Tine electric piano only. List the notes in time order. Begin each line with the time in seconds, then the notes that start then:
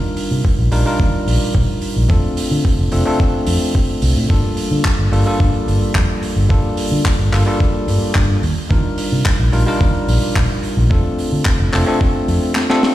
Already playing: G3 D4 D#4 F4 A#4
0.72 G3 D4 D#4 F4 A#4
0.85 G3 D4 D#4 F4 A#4
2.09 A3 C4 D4 F4 A4
2.92 A3 C4 D4 F4 A4
3.05 A3 C4 D4 F4 A4
4.29 G3 A#3 D4 F4 A4
5.12 G3 A#3 D4 F4 A4
5.25 G3 A#3 D4 F4 A4
6.49 G3 A#3 D4 F4 A4
7.32 G3 A#3 D4 F4 A4
7.46 G3 A#3 D4 F4 A4
8.69 G3 D4 D#4 F4 A#4
9.53 G3 D4 D#4 F4 A#4
9.66 G3 D4 D#4 F4 A#4
10.89 A3 C4 D4 F4 A4
11.73 A3 C4 D4 F4 A4
11.86 A3 C4 D4 F4 A4
12.69 A3 C4 D4 F4 A4